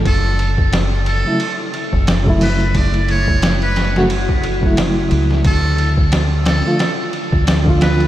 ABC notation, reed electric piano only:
X:1
M:4/4
L:1/16
Q:"Swing 16ths" 1/4=89
K:F#m
V:1 name="Reed electric piano" clef=bass
z6 z [C,F,A,E] z4 z [C,F,A,E]3- | [C,F,A,E]6- [C,F,A,E] [C,F,A,F] z3 [C,F,A,E]4- [C,F,A,E] | z6 z [D,=F,A,=F] z4 z [D,F,A,F]3 |]